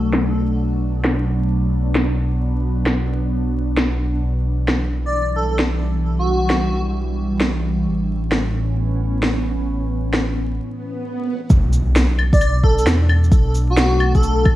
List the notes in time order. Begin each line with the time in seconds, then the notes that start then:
Already playing: B1 B2 F#3 A3 D4
0.13 snare
0.72 B3
1.04 snare
1.95 snare
2.86 snare
3.77 snare
4.23 B1 E3
4.68 snare
4.90 G3
5.06 D5
5.36 A4
5.51 A4
5.59 snare
6.19 F#4
6.50 snare
7.41 snare
7.86 A1 A2
8.08 C#4
8.26 B3
8.32 snare
9.23 snare
10.13 snare
10.59 swell
11.50 B1 B2, kick, impact, shaker
11.64 F#3
11.70 D4, shaker
11.96 snare, shaker
12.19 claves
12.33 D5, kick, shaker
12.41 A3, claves, shaker
12.64 A4, kick
12.78 A4, shaker
12.86 E2, snare, shaker
13.09 claves
13.24 shaker
13.32 B1, kick, shaker
13.55 shaker
13.70 F#4
13.77 snare, shaker
14.00 claves
14.15 A4, kick, shaker
14.23 shaker
14.45 F#1, kick, claves